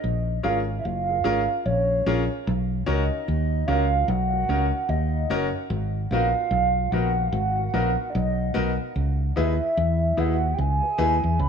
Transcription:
0.00 0.38 A#1 medium
0.00 0.39 D#5 loud
0.43 0.79 G#1 medium
0.43 0.59 C#4 medium
0.43 0.59 F4 medium
0.43 0.59 G#4 medium
0.43 0.59 A#4 loud
0.43 0.58 F5 loud
0.79 0.86 E5 medium
0.84 1.19 F#1 medium
0.84 1.67 F5 loud
1.09 1.15 G#4 soft
1.09 1.15 A#4 soft
1.24 1.46 G#1 medium
1.24 1.40 C#4 medium
1.24 1.40 F4 medium
1.24 1.40 G#4 medium
1.24 1.40 A#4 loud
1.66 2.00 A#1 medium
1.66 2.30 C#5 medium
2.06 2.27 A#1 medium
2.06 2.21 C#4 loud
2.06 2.22 F4 loud
2.06 2.22 G#4 medium
2.06 2.22 A#4 medium
2.47 2.82 B1 loud
2.86 3.08 C#2 medium
2.86 3.02 C#4 loud
2.86 3.02 D#4 medium
2.86 3.02 F#4 medium
2.86 3.02 A#4 loud
2.86 3.69 D#5 loud
3.28 3.63 D#2 medium
3.67 4.03 C#2 loud
3.67 3.83 C#4 medium
3.67 3.83 D#4 medium
3.67 3.84 F#4 medium
3.67 3.84 A#4 medium
3.67 4.10 F5 loud
4.08 4.43 B1 loud
4.08 4.91 F#5 loud
4.33 4.39 F#4 soft
4.33 4.39 A#4 soft
4.49 4.70 C#2 medium
4.49 4.65 C#4 medium
4.49 4.65 D#4 medium
4.49 4.65 F#4 medium
4.49 4.65 A#4 medium
4.89 5.24 D#2 medium
4.89 5.54 D#5 loud
5.30 5.51 F#1 medium
5.30 5.46 C#4 loud
5.30 5.46 D#4 medium
5.30 5.46 F#4 medium
5.30 5.46 A#4 loud
5.70 6.05 G#1 loud
6.11 6.32 A#1 loud
6.11 6.27 B3 medium
6.11 6.27 D#4 medium
6.11 6.27 F#4 medium
6.11 6.28 A#4 medium
6.11 6.92 F5 loud
6.51 6.86 B1 medium
6.91 7.27 A#1 medium
6.91 7.08 B3 medium
6.91 7.08 D#4 medium
6.91 7.08 F#4 medium
6.91 7.09 A#4 medium
6.91 7.26 F#5 loud
7.31 7.68 G#1 loud
7.31 8.11 F#5 loud
7.59 7.64 F#4 soft
7.59 7.64 A#4 soft
7.74 7.95 A#1 medium
7.74 7.89 B3 medium
7.74 7.89 D#4 medium
7.74 7.89 F#4 medium
7.74 7.89 A#4 loud
8.10 8.14 D5 medium
8.10 8.78 D#5 medium
8.15 8.50 B1 loud
8.54 8.77 B1 medium
8.54 8.70 B3 loud
8.54 8.70 D#4 medium
8.54 8.70 F#4 medium
8.54 8.70 A#4 loud
8.96 9.31 C#2 medium
9.36 9.58 D#2 medium
9.36 9.51 D#4 medium
9.36 9.52 E4 medium
9.36 9.52 G#4 medium
9.36 9.52 B4 loud
9.36 10.21 E5 loud
9.77 10.12 E2 medium
10.17 10.52 D#2 medium
10.17 10.33 D#4 medium
10.17 10.33 E4 medium
10.17 10.33 G#4 medium
10.17 10.33 B4 medium
10.17 10.56 F#5 medium
10.54 10.61 G5 medium
10.58 10.79 C#2 loud
10.58 11.40 G#5 loud
10.82 10.88 G#4 soft
10.82 10.89 B4 soft
10.98 11.20 D#2 loud
10.98 11.14 D#4 medium
10.98 11.14 E4 medium
10.98 11.14 G#4 medium
10.98 11.14 B4 loud
11.24 11.37 E2 medium
11.39 11.49 C#2 medium
11.39 11.49 B5 loud

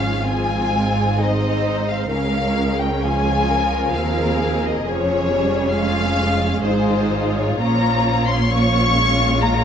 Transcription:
0.00 2.10 G#1 medium
0.00 2.11 G#2 soft
0.00 0.24 F3 soft
0.00 0.25 C#4 soft
0.00 0.24 F4 soft
0.00 0.23 G#4 soft
0.00 0.26 F5 medium
0.25 0.72 F3 medium
0.25 1.18 C4 soft
0.25 1.17 F4 soft
0.25 1.17 G#4 soft
0.25 1.19 G#5 medium
0.73 2.10 G#3 soft
1.17 2.09 C4 medium
1.17 2.10 D#4 medium
1.17 2.10 C5 soft
1.17 1.89 D#5 medium
1.89 2.09 F5 medium
2.10 3.91 C#2 soft
2.10 3.91 C#2 medium
2.10 3.01 G#3 medium
2.10 3.95 C#4 medium
2.10 3.03 C#4 soft
2.10 3.01 A#4 soft
2.10 2.78 F5 medium
2.80 3.03 G5 medium
3.01 4.85 F3 medium
3.01 3.94 F4 soft
3.01 3.48 G#4 medium
3.01 3.95 G#5 medium
3.50 3.94 A#4 medium
3.94 4.85 D#2 medium
3.94 4.86 D#2 medium
3.94 4.87 C4 medium
3.94 4.85 G#4 medium
3.94 4.84 A#4 medium
3.94 4.64 F5 medium
4.64 4.86 D#5 medium
4.85 6.59 F1 medium
4.85 6.59 F2 medium
4.85 5.30 F3 medium
4.85 6.63 C#4 medium
4.85 5.74 G#4 medium
4.85 5.75 C#5 medium
5.31 5.74 G3 medium
5.74 6.18 G#3 medium
5.74 6.61 F4 medium
5.74 7.56 G#4 medium
5.74 6.63 F5 medium
6.20 7.58 G#3 medium
6.62 7.59 G#1 medium
6.62 7.59 G#2 medium
6.62 7.60 D#4 medium
6.62 8.47 F4 medium
6.62 7.34 C5 medium
7.37 7.60 C#5 medium
7.59 9.64 A#1 medium
7.59 9.64 A#2 medium
7.59 8.49 F3 medium
7.59 8.48 C#4 medium
7.59 9.64 C#5 medium
7.59 8.26 A#5 medium
8.28 8.50 C6 medium
8.50 8.95 F3 medium
8.50 9.39 C#4 medium
8.50 9.64 F4 medium
8.50 9.39 C#6 loud
8.96 9.64 G#3 medium
9.40 9.64 F4 medium
9.40 9.64 A#5 medium

